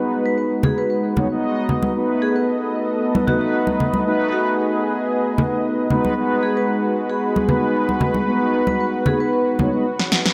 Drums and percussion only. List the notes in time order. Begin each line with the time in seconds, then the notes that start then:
0.63 low conga
1.17 high conga, low conga
1.69 low conga
1.83 high conga
3.15 high conga
3.28 low conga
3.67 high conga
3.80 low conga
3.94 high conga
5.38 low conga
5.90 low conga
6.05 high conga
7.36 high conga
7.49 low conga
7.89 high conga
8.01 low conga
8.14 high conga
8.67 high conga
9.06 low conga
9.59 high conga, low conga
9.99 snare
10.12 snare
10.26 snare